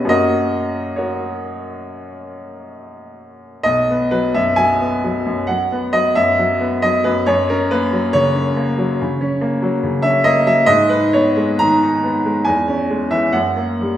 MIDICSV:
0, 0, Header, 1, 2, 480
1, 0, Start_track
1, 0, Key_signature, 5, "major"
1, 0, Tempo, 895522
1, 25, Time_signature, 4, 2, 24, 8
1, 1465, Tempo, 911854
1, 2905, Tempo, 883652
1, 4345, Tempo, 849858
1, 5785, Tempo, 888889
1, 7225, Tempo, 943396
1, 7549, End_track
2, 0, Start_track
2, 0, Title_t, "Upright piano"
2, 0, Program_c, 0, 0
2, 0, Control_c, 0, 64, 127
2, 25, Note_on_c, 0, 42, 55
2, 27, Note_on_c, 0, 54, 39
2, 35, Control_c, 0, 64, 0
2, 36, Note_on_c, 0, 58, 38
2, 44, Note_on_c, 0, 61, 41
2, 48, Note_on_c, 0, 75, 85
2, 51, Note_on_c, 0, 66, 60
2, 55, Note_on_c, 0, 70, 61
2, 130, Control_c, 0, 64, 127
2, 502, Note_off_c, 0, 66, 0
2, 504, Note_off_c, 0, 70, 0
2, 515, Note_on_c, 0, 73, 57
2, 522, Note_off_c, 0, 75, 0
2, 525, Note_on_c, 0, 66, 46
2, 525, Note_on_c, 0, 70, 42
2, 1451, Note_off_c, 0, 70, 0
2, 1452, Note_off_c, 0, 66, 0
2, 1468, Note_off_c, 0, 73, 0
2, 1920, Note_off_c, 0, 42, 0
2, 1922, Note_off_c, 0, 54, 0
2, 1926, Note_off_c, 0, 58, 0
2, 1930, Note_off_c, 0, 61, 0
2, 1939, Note_on_c, 0, 75, 85
2, 1949, Note_on_c, 0, 35, 59
2, 1952, Control_c, 0, 64, 0
2, 2043, Control_c, 0, 64, 127
2, 2081, Note_on_c, 0, 59, 49
2, 2183, Note_off_c, 0, 75, 0
2, 2190, Note_on_c, 0, 71, 76
2, 2192, Note_on_c, 0, 54, 50
2, 2266, Note_off_c, 0, 59, 0
2, 2308, Note_off_c, 0, 71, 0
2, 2313, Note_on_c, 0, 76, 77
2, 2315, Note_on_c, 0, 42, 46
2, 2382, Note_off_c, 0, 54, 0
2, 2427, Note_on_c, 0, 80, 92
2, 2430, Note_off_c, 0, 76, 0
2, 2436, Note_on_c, 0, 54, 47
2, 2504, Note_off_c, 0, 42, 0
2, 2557, Note_on_c, 0, 59, 49
2, 2624, Note_off_c, 0, 54, 0
2, 2679, Note_on_c, 0, 54, 47
2, 2744, Note_off_c, 0, 59, 0
2, 2795, Note_on_c, 0, 42, 45
2, 2864, Note_off_c, 0, 54, 0
2, 2889, Note_off_c, 0, 35, 0
2, 2906, Note_on_c, 0, 78, 71
2, 2907, Note_off_c, 0, 80, 0
2, 2914, Note_on_c, 0, 54, 43
2, 2915, Control_c, 0, 64, 0
2, 2984, Note_off_c, 0, 42, 0
2, 3013, Control_c, 0, 64, 127
2, 3042, Note_on_c, 0, 59, 54
2, 3105, Note_off_c, 0, 54, 0
2, 3149, Note_off_c, 0, 78, 0
2, 3154, Note_on_c, 0, 75, 87
2, 3157, Note_on_c, 0, 54, 47
2, 3228, Note_off_c, 0, 59, 0
2, 3272, Note_off_c, 0, 75, 0
2, 3277, Note_on_c, 0, 76, 87
2, 3282, Note_on_c, 0, 42, 47
2, 3345, Note_off_c, 0, 54, 0
2, 3404, Note_on_c, 0, 54, 52
2, 3466, Note_off_c, 0, 42, 0
2, 3522, Note_on_c, 0, 59, 52
2, 3587, Note_off_c, 0, 54, 0
2, 3630, Note_off_c, 0, 76, 0
2, 3641, Note_on_c, 0, 75, 86
2, 3647, Note_on_c, 0, 54, 46
2, 3706, Note_off_c, 0, 59, 0
2, 3753, Note_off_c, 0, 75, 0
2, 3759, Note_on_c, 0, 71, 78
2, 3761, Note_on_c, 0, 42, 48
2, 3829, Note_off_c, 0, 54, 0
2, 3873, Note_off_c, 0, 71, 0
2, 3874, Note_off_c, 0, 42, 0
2, 3875, Control_c, 0, 64, 0
2, 3880, Note_on_c, 0, 73, 93
2, 3884, Note_on_c, 0, 42, 66
2, 3949, Control_c, 0, 64, 127
2, 3994, Note_off_c, 0, 73, 0
2, 4006, Note_on_c, 0, 70, 76
2, 4009, Note_on_c, 0, 61, 51
2, 4117, Note_off_c, 0, 70, 0
2, 4122, Note_on_c, 0, 71, 88
2, 4123, Note_on_c, 0, 58, 51
2, 4191, Note_off_c, 0, 61, 0
2, 4239, Note_on_c, 0, 54, 52
2, 4307, Note_off_c, 0, 58, 0
2, 4351, Note_on_c, 0, 73, 99
2, 4354, Note_off_c, 0, 71, 0
2, 4356, Note_on_c, 0, 49, 49
2, 4426, Note_off_c, 0, 54, 0
2, 4477, Note_on_c, 0, 61, 48
2, 4547, Note_off_c, 0, 49, 0
2, 4597, Note_on_c, 0, 58, 53
2, 4667, Note_off_c, 0, 61, 0
2, 4719, Note_on_c, 0, 54, 55
2, 4787, Note_off_c, 0, 58, 0
2, 4818, Note_off_c, 0, 42, 0
2, 4842, Control_c, 0, 64, 0
2, 4851, Note_on_c, 0, 49, 50
2, 4907, Note_off_c, 0, 54, 0
2, 4945, Control_c, 0, 64, 127
2, 4960, Note_on_c, 0, 61, 60
2, 5033, Note_off_c, 0, 49, 0
2, 5076, Note_on_c, 0, 58, 52
2, 5146, Note_off_c, 0, 61, 0
2, 5194, Note_on_c, 0, 54, 57
2, 5263, Note_off_c, 0, 58, 0
2, 5313, Note_on_c, 0, 49, 54
2, 5381, Note_off_c, 0, 54, 0
2, 5421, Note_on_c, 0, 76, 85
2, 5425, Note_on_c, 0, 61, 56
2, 5429, Note_off_c, 0, 73, 0
2, 5500, Note_off_c, 0, 49, 0
2, 5542, Note_off_c, 0, 76, 0
2, 5543, Note_on_c, 0, 75, 89
2, 5549, Note_on_c, 0, 58, 52
2, 5617, Note_off_c, 0, 61, 0
2, 5664, Note_off_c, 0, 75, 0
2, 5670, Note_on_c, 0, 54, 48
2, 5672, Note_on_c, 0, 76, 88
2, 5740, Note_off_c, 0, 58, 0
2, 5782, Note_on_c, 0, 75, 100
2, 5786, Note_on_c, 0, 44, 65
2, 5789, Note_off_c, 0, 54, 0
2, 5790, Note_off_c, 0, 76, 0
2, 5795, Control_c, 0, 64, 0
2, 5883, Control_c, 0, 64, 127
2, 5904, Note_off_c, 0, 75, 0
2, 5906, Note_on_c, 0, 71, 79
2, 5910, Note_on_c, 0, 63, 54
2, 6030, Note_off_c, 0, 71, 0
2, 6035, Note_on_c, 0, 73, 89
2, 6042, Note_on_c, 0, 59, 56
2, 6107, Note_off_c, 0, 63, 0
2, 6161, Note_on_c, 0, 56, 52
2, 6235, Note_off_c, 0, 59, 0
2, 6281, Note_off_c, 0, 73, 0
2, 6282, Note_on_c, 0, 82, 99
2, 6287, Note_on_c, 0, 51, 49
2, 6353, Note_off_c, 0, 56, 0
2, 6408, Note_on_c, 0, 63, 50
2, 6473, Note_off_c, 0, 51, 0
2, 6523, Note_on_c, 0, 59, 47
2, 6590, Note_off_c, 0, 63, 0
2, 6642, Note_on_c, 0, 56, 50
2, 6705, Note_off_c, 0, 59, 0
2, 6726, Note_off_c, 0, 44, 0
2, 6744, Note_on_c, 0, 80, 77
2, 6750, Note_off_c, 0, 82, 0
2, 6752, Note_on_c, 0, 40, 59
2, 6753, Note_off_c, 0, 56, 0
2, 6757, Control_c, 0, 64, 0
2, 6829, Control_c, 0, 64, 127
2, 6870, Note_on_c, 0, 61, 54
2, 6991, Note_on_c, 0, 56, 47
2, 7058, Note_off_c, 0, 61, 0
2, 7100, Note_on_c, 0, 52, 47
2, 7101, Note_on_c, 0, 76, 76
2, 7103, Note_off_c, 0, 80, 0
2, 7181, Note_off_c, 0, 56, 0
2, 7215, Note_off_c, 0, 40, 0
2, 7219, Note_on_c, 0, 78, 78
2, 7223, Note_on_c, 0, 42, 53
2, 7225, Note_off_c, 0, 52, 0
2, 7226, Note_off_c, 0, 76, 0
2, 7237, Control_c, 0, 64, 0
2, 7328, Control_c, 0, 64, 127
2, 7343, Note_on_c, 0, 58, 41
2, 7466, Note_on_c, 0, 55, 42
2, 7538, Note_off_c, 0, 58, 0
2, 7549, Note_off_c, 0, 42, 0
2, 7549, Note_off_c, 0, 55, 0
2, 7549, Note_off_c, 0, 78, 0
2, 7549, End_track
0, 0, End_of_file